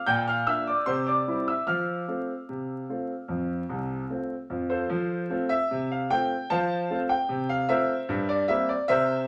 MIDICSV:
0, 0, Header, 1, 2, 480
1, 0, Start_track
1, 0, Key_signature, -1, "major"
1, 0, Tempo, 806452
1, 38, Time_signature, 2, 2, 24, 8
1, 2918, Tempo, 797872
1, 5547, End_track
2, 0, Start_track
2, 0, Title_t, "Grand piano"
2, 0, Program_c, 0, 0
2, 38, Note_on_c, 0, 91, 107
2, 41, Note_on_c, 0, 46, 86
2, 45, Note_on_c, 0, 79, 76
2, 152, Note_off_c, 0, 79, 0
2, 157, Note_off_c, 0, 91, 0
2, 163, Note_on_c, 0, 89, 90
2, 171, Note_on_c, 0, 77, 68
2, 241, Note_off_c, 0, 46, 0
2, 275, Note_off_c, 0, 77, 0
2, 278, Note_on_c, 0, 88, 88
2, 279, Note_off_c, 0, 89, 0
2, 281, Note_on_c, 0, 58, 48
2, 282, Note_on_c, 0, 62, 46
2, 284, Note_on_c, 0, 65, 52
2, 287, Note_on_c, 0, 76, 68
2, 392, Note_off_c, 0, 76, 0
2, 396, Note_off_c, 0, 88, 0
2, 401, Note_on_c, 0, 86, 76
2, 411, Note_off_c, 0, 58, 0
2, 411, Note_off_c, 0, 62, 0
2, 411, Note_on_c, 0, 74, 56
2, 413, Note_off_c, 0, 65, 0
2, 512, Note_on_c, 0, 84, 90
2, 514, Note_off_c, 0, 74, 0
2, 514, Note_on_c, 0, 48, 85
2, 517, Note_off_c, 0, 86, 0
2, 520, Note_on_c, 0, 72, 65
2, 628, Note_off_c, 0, 72, 0
2, 632, Note_off_c, 0, 84, 0
2, 635, Note_on_c, 0, 86, 80
2, 642, Note_on_c, 0, 74, 61
2, 717, Note_off_c, 0, 48, 0
2, 758, Note_on_c, 0, 55, 44
2, 759, Note_on_c, 0, 60, 43
2, 762, Note_on_c, 0, 64, 53
2, 826, Note_off_c, 0, 86, 0
2, 861, Note_off_c, 0, 74, 0
2, 879, Note_on_c, 0, 88, 71
2, 888, Note_off_c, 0, 55, 0
2, 889, Note_off_c, 0, 60, 0
2, 889, Note_on_c, 0, 76, 54
2, 891, Note_off_c, 0, 64, 0
2, 993, Note_off_c, 0, 76, 0
2, 993, Note_on_c, 0, 89, 74
2, 995, Note_on_c, 0, 53, 71
2, 996, Note_off_c, 0, 88, 0
2, 1000, Note_on_c, 0, 77, 54
2, 1199, Note_off_c, 0, 53, 0
2, 1237, Note_on_c, 0, 57, 44
2, 1240, Note_on_c, 0, 60, 40
2, 1241, Note_on_c, 0, 65, 44
2, 1369, Note_off_c, 0, 57, 0
2, 1371, Note_off_c, 0, 60, 0
2, 1371, Note_off_c, 0, 65, 0
2, 1481, Note_on_c, 0, 48, 58
2, 1684, Note_off_c, 0, 48, 0
2, 1722, Note_on_c, 0, 57, 39
2, 1724, Note_on_c, 0, 60, 37
2, 1727, Note_on_c, 0, 65, 39
2, 1853, Note_off_c, 0, 57, 0
2, 1854, Note_off_c, 0, 60, 0
2, 1856, Note_off_c, 0, 65, 0
2, 1954, Note_on_c, 0, 41, 59
2, 1955, Note_on_c, 0, 53, 56
2, 2148, Note_off_c, 0, 41, 0
2, 2149, Note_off_c, 0, 53, 0
2, 2198, Note_on_c, 0, 36, 61
2, 2199, Note_on_c, 0, 48, 59
2, 2342, Note_off_c, 0, 89, 0
2, 2390, Note_off_c, 0, 36, 0
2, 2391, Note_off_c, 0, 48, 0
2, 2440, Note_on_c, 0, 65, 37
2, 2442, Note_on_c, 0, 57, 38
2, 2442, Note_on_c, 0, 60, 40
2, 2572, Note_off_c, 0, 65, 0
2, 2573, Note_off_c, 0, 57, 0
2, 2573, Note_off_c, 0, 60, 0
2, 2658, Note_off_c, 0, 77, 0
2, 2678, Note_on_c, 0, 41, 58
2, 2678, Note_on_c, 0, 53, 62
2, 2795, Note_on_c, 0, 72, 72
2, 2802, Note_on_c, 0, 69, 53
2, 2803, Note_on_c, 0, 65, 51
2, 2870, Note_off_c, 0, 41, 0
2, 2870, Note_off_c, 0, 53, 0
2, 2913, Note_on_c, 0, 53, 89
2, 3120, Note_off_c, 0, 53, 0
2, 3152, Note_off_c, 0, 65, 0
2, 3155, Note_on_c, 0, 57, 58
2, 3160, Note_on_c, 0, 60, 56
2, 3161, Note_on_c, 0, 65, 60
2, 3181, Note_off_c, 0, 72, 0
2, 3257, Note_off_c, 0, 69, 0
2, 3273, Note_on_c, 0, 76, 96
2, 3289, Note_off_c, 0, 57, 0
2, 3292, Note_off_c, 0, 60, 0
2, 3293, Note_off_c, 0, 65, 0
2, 3403, Note_on_c, 0, 48, 82
2, 3505, Note_off_c, 0, 76, 0
2, 3526, Note_on_c, 0, 77, 72
2, 3606, Note_off_c, 0, 48, 0
2, 3640, Note_on_c, 0, 57, 55
2, 3641, Note_on_c, 0, 79, 100
2, 3644, Note_off_c, 0, 77, 0
2, 3645, Note_on_c, 0, 60, 53
2, 3646, Note_on_c, 0, 65, 55
2, 3772, Note_off_c, 0, 57, 0
2, 3776, Note_off_c, 0, 60, 0
2, 3777, Note_off_c, 0, 65, 0
2, 3869, Note_off_c, 0, 79, 0
2, 3880, Note_on_c, 0, 81, 106
2, 3881, Note_on_c, 0, 53, 88
2, 3888, Note_on_c, 0, 72, 78
2, 3888, Note_on_c, 0, 77, 80
2, 4085, Note_off_c, 0, 53, 0
2, 4123, Note_on_c, 0, 57, 51
2, 4123, Note_on_c, 0, 60, 50
2, 4126, Note_on_c, 0, 65, 61
2, 4168, Note_off_c, 0, 81, 0
2, 4219, Note_off_c, 0, 72, 0
2, 4220, Note_off_c, 0, 77, 0
2, 4236, Note_on_c, 0, 79, 87
2, 4254, Note_off_c, 0, 57, 0
2, 4254, Note_off_c, 0, 60, 0
2, 4256, Note_off_c, 0, 65, 0
2, 4353, Note_on_c, 0, 48, 84
2, 4465, Note_off_c, 0, 79, 0
2, 4477, Note_on_c, 0, 77, 99
2, 4559, Note_off_c, 0, 48, 0
2, 4592, Note_on_c, 0, 76, 94
2, 4595, Note_on_c, 0, 57, 52
2, 4596, Note_on_c, 0, 60, 52
2, 4597, Note_on_c, 0, 65, 64
2, 4597, Note_on_c, 0, 72, 68
2, 4598, Note_off_c, 0, 77, 0
2, 4599, Note_on_c, 0, 70, 73
2, 4728, Note_off_c, 0, 57, 0
2, 4729, Note_off_c, 0, 60, 0
2, 4729, Note_off_c, 0, 65, 0
2, 4834, Note_on_c, 0, 43, 90
2, 4934, Note_off_c, 0, 72, 0
2, 4935, Note_off_c, 0, 70, 0
2, 4937, Note_off_c, 0, 76, 0
2, 4955, Note_on_c, 0, 74, 91
2, 5039, Note_off_c, 0, 43, 0
2, 5071, Note_on_c, 0, 76, 94
2, 5074, Note_on_c, 0, 55, 49
2, 5076, Note_off_c, 0, 74, 0
2, 5077, Note_on_c, 0, 58, 59
2, 5078, Note_on_c, 0, 60, 57
2, 5194, Note_off_c, 0, 76, 0
2, 5196, Note_on_c, 0, 74, 80
2, 5207, Note_off_c, 0, 55, 0
2, 5208, Note_off_c, 0, 58, 0
2, 5209, Note_off_c, 0, 60, 0
2, 5311, Note_on_c, 0, 76, 105
2, 5316, Note_off_c, 0, 74, 0
2, 5316, Note_on_c, 0, 48, 87
2, 5318, Note_on_c, 0, 70, 79
2, 5319, Note_on_c, 0, 72, 81
2, 5520, Note_off_c, 0, 48, 0
2, 5540, Note_off_c, 0, 70, 0
2, 5540, Note_off_c, 0, 72, 0
2, 5542, Note_off_c, 0, 76, 0
2, 5547, End_track
0, 0, End_of_file